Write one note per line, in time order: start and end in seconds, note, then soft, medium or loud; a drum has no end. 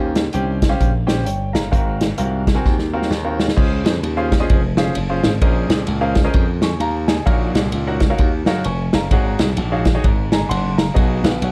0.00 0.27 D#2 medium
0.00 0.58 D#3 medium
0.00 0.18 C#4 medium
0.00 0.18 G4 medium
0.00 0.18 C5 medium
0.00 0.14 D#5 medium
0.00 0.18 F5 medium
0.00 0.14 G#5 medium
0.15 snare loud
0.15 closed hi-hat medium
0.33 0.73 C2 medium
0.33 0.58 C#4 medium
0.33 0.58 G4 medium
0.33 0.58 C5 medium
0.33 0.58 G5 medium
0.33 closed hi-hat medium
0.62 kick medium
0.62 snare loud
0.62 closed hi-hat medium
0.69 0.89 C#4 medium
0.69 0.89 G4 medium
0.69 0.90 C5 medium
0.69 0.89 F5 medium
0.80 1.27 A#1 medium
0.80 kick medium
0.80 closed hi-hat medium
1.07 1.23 C#4 medium
1.07 1.23 G4 medium
1.07 1.23 C5 medium
1.07 1.23 G5 medium
1.07 snare loud
1.07 closed hi-hat medium
1.25 1.51 G1 medium
1.25 1.53 C#5 medium
1.25 1.52 G5 medium
1.25 closed hi-hat medium
1.53 1.70 G1 medium
1.53 1.70 F5 medium
1.53 1.98 A#5 medium
1.53 snare loud
1.53 closed hi-hat medium
1.71 2.12 G#1 medium
1.71 2.42 G#2 medium
1.71 2.03 C4 medium
1.71 2.03 F#4 medium
1.71 2.03 A#4 medium
1.71 2.03 F5 medium
1.71 kick loud
1.71 closed hi-hat medium
2.01 snare loud
2.01 closed hi-hat medium
2.18 2.58 C2 medium
2.18 2.42 C4 medium
2.18 2.42 F#4 medium
2.18 2.42 A#4 medium
2.18 2.42 F5 medium
2.18 closed hi-hat medium
2.47 kick medium
2.47 snare loud
2.47 closed hi-hat medium
2.55 2.74 C4 medium
2.55 2.75 F#4 medium
2.55 2.74 A#4 medium
2.55 2.75 G#5 medium
2.65 3.05 D#2 medium
2.65 kick loud
2.65 snare soft
2.79 snare medium
2.93 3.09 C4 medium
2.93 3.09 F#4 medium
2.93 3.09 A#4 medium
2.93 3.09 F5 medium
3.02 snare medium
3.10 3.50 D#2 medium
3.10 snare medium
3.25 3.45 C4 medium
3.25 3.46 F#4 medium
3.25 3.45 A#4 medium
3.25 3.45 F5 medium
3.40 snare loud
3.48 snare medium
3.56 3.81 C#2 loud
3.56 4.28 C#3 medium
3.56 3.93 C#4 medium
3.56 3.93 F4 medium
3.56 3.93 G#4 medium
3.56 3.93 C5 medium
3.56 3.93 D#5 medium
3.56 kick loud
3.56 crash loud
3.84 4.00 F2 medium
3.84 snare loud
3.84 ride bell medium
4.03 4.43 D#2 medium
4.03 ride bell medium
4.17 4.33 C#4 medium
4.17 4.33 F4 medium
4.17 4.33 G#4 medium
4.17 4.33 C5 medium
4.17 4.33 F5 loud
4.32 kick medium
4.32 snare loud
4.32 ride bell medium
4.40 4.59 C#4 medium
4.40 4.59 F4 medium
4.40 4.60 G#4 medium
4.40 4.60 C5 medium
4.40 4.59 D#5 loud
4.50 4.89 F1 medium
4.50 kick loud
4.50 ride bell medium
4.77 4.93 C#4 medium
4.77 4.93 F4 medium
4.77 4.93 G#4 medium
4.77 4.93 C5 medium
4.77 4.93 F5 medium
4.77 snare loud
4.77 ride bell medium
4.95 5.20 F#1 medium
4.95 ride bell medium
5.09 5.30 C#4 medium
5.09 5.30 F4 medium
5.09 5.30 G#4 medium
5.09 5.30 C5 medium
5.09 5.30 F5 medium
5.24 5.39 G#1 medium
5.24 snare loud
5.24 ride bell medium
5.42 5.66 A#1 loud
5.42 6.12 A#2 medium
5.42 5.78 C#4 medium
5.42 5.78 G#4 medium
5.42 5.78 A#4 medium
5.42 5.78 C5 medium
5.42 5.78 D#5 medium
5.42 kick loud
5.42 ride bell medium
5.70 5.85 C2 medium
5.70 snare loud
5.70 ride bell medium
5.87 6.27 C#2 loud
5.87 ride bell medium
6.01 6.17 C#4 medium
6.01 6.17 G#4 medium
6.01 6.17 A#4 medium
6.01 6.17 C5 medium
6.01 6.17 F5 loud
6.15 kick loud
6.15 snare loud
6.15 ride bell medium
6.24 6.44 C#4 medium
6.24 6.44 G#4 medium
6.24 6.44 A#4 medium
6.24 6.44 C5 medium
6.24 6.44 D#5 loud
6.34 6.74 F2 loud
6.34 kick loud
6.34 ride bell medium
6.62 6.80 G#5 medium
6.62 6.80 C#6 medium
6.62 snare loud
6.62 ride bell medium
6.80 7.19 D#2 medium
6.80 7.07 F5 medium
6.80 7.07 A#5 medium
6.80 ride bell medium
7.08 7.52 D#5 medium
7.08 7.52 G#5 medium
7.08 snare loud
7.08 ride bell medium
7.26 7.51 A#1 loud
7.26 7.97 A#2 medium
7.26 7.62 D#4 medium
7.26 7.62 F#4 medium
7.26 7.62 A#4 medium
7.26 7.62 C#5 medium
7.26 7.62 F5 medium
7.26 kick loud
7.26 ride bell medium
7.55 7.70 C2 medium
7.55 snare loud
7.55 ride bell medium
7.72 8.12 C#2 medium
7.72 ride bell medium
7.87 8.02 D#4 medium
7.87 8.03 F#4 medium
7.87 8.03 A#4 medium
7.87 8.02 C#5 medium
7.87 8.03 F#5 medium
8.00 kick loud
8.00 snare loud
8.00 ride bell medium
8.10 8.29 D#4 medium
8.10 8.29 F#4 medium
8.10 8.29 A#4 medium
8.10 8.29 C#5 medium
8.10 8.29 F5 loud
8.18 8.43 D#2 medium
8.18 kick loud
8.18 ride bell medium
8.46 8.63 F#2 medium
8.46 8.62 D#4 medium
8.46 8.63 F#4 medium
8.46 8.63 A#4 medium
8.46 8.63 C#5 medium
8.46 8.63 F5 loud
8.46 snare loud
8.46 ride bell medium
8.64 8.89 F1 loud
8.64 8.92 G#5 medium
8.64 8.92 C#6 medium
8.64 ride bell medium
8.93 9.09 F#1 medium
8.93 9.38 F5 medium
8.93 9.38 A#5 medium
8.93 snare loud
8.93 ride bell medium
9.11 9.35 G#1 medium
9.11 9.82 G#2 medium
9.11 9.47 D#4 medium
9.11 9.48 F#4 medium
9.11 9.48 G#4 medium
9.11 9.48 C#5 medium
9.11 9.48 F#5 medium
9.11 kick loud
9.11 ride bell medium
9.39 9.55 C2 medium
9.39 snare loud
9.39 ride bell medium
9.57 9.97 A#1 medium
9.57 ride bell medium
9.72 9.87 D#4 medium
9.72 9.87 F#4 medium
9.72 9.87 G#4 medium
9.72 9.87 C#5 medium
9.72 9.87 F5 medium
9.85 kick medium
9.85 snare loud
9.85 ride bell medium
9.95 10.04 D#4 medium
9.95 10.04 F#4 medium
9.95 10.04 G#4 medium
9.95 10.04 C#5 medium
9.95 10.04 D#5 medium
10.04 10.43 G#1 medium
10.04 10.75 G#2 medium
10.04 kick loud
10.04 ride bell medium
10.32 10.50 D#5 medium
10.32 10.49 G#5 medium
10.32 10.49 A#5 medium
10.32 snare loud
10.32 ride bell medium
10.49 10.89 F#1 medium
10.49 10.77 F#5 medium
10.49 10.76 C6 medium
10.49 ride bell medium
10.78 11.22 F5 medium
10.78 11.22 A#5 medium
10.78 snare loud
10.78 ride bell medium
10.94 11.20 B1 loud
10.94 11.52 B2 medium
10.94 11.31 B3 medium
10.94 11.31 D#4 medium
10.94 11.31 F#4 medium
10.94 11.31 G#4 medium
10.94 11.24 D#5 medium
10.94 kick loud
10.94 ride bell medium
11.24 11.39 A#1 medium
11.24 11.41 B4 medium
11.24 11.41 F5 medium
11.24 snare loud
11.24 ride bell medium
11.42 11.52 B1 loud
11.42 11.52 C#5 medium
11.42 11.52 F#5 medium
11.42 ride bell medium